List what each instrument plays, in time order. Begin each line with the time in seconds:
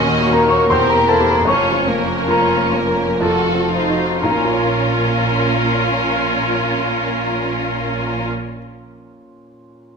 Already playing: grand piano D#2 A#2 A#3 C#4 C5 C6, cello section D#2, double bass section D#2, viola section C#4, violin section F#4 D#5
0.20 grand piano F#4
0.32 viola section A#3, violin section D#4 C#5, grand piano A#4 A#5
0.45 grand piano A#4
0.50 grand piano C#5 C#6
0.69 double bass section E1, cello section E2, grand piano E2 C5 C6, viola section C4, violin section G4 A#4
0.90 grand piano A#4 A#5
0.95 grand piano A#3
1.08 viola section A#3, violin section E4 C5, grand piano A4 A5
1.20 grand piano C4 G4
1.29 grand piano A#4 A#5
1.45 double bass section F1, cello section F2, grand piano F2 C#5 C#6, viola section C#4, violin section F4
1.49 violin section C#5
1.72 grand piano F3
1.86 viola section A#3, violin section C#4 A#4
2.00 grand piano A#3
2.28 viola section C#4, grand piano F4 A#4 A#5, violin section F4 C#5
2.56 grand piano A#3
2.73 viola section A#3, violin section C#4 A#4
2.87 grand piano A#4
3.21 grand piano F2 A4 A5, viola section F4, violin section F#4 A4
3.54 grand piano C4
3.71 viola section D#4, violin section F4 C5
3.89 grand piano D#4 F#4
4.22 double bass section A#1, cello section A#2, timpani A#2, grand piano A#2 A#5, viola section C#4, violin section F4 A#4
4.31 grand piano A#3
4.37 grand piano C#4
4.45 grand piano F4
4.52 grand piano C#5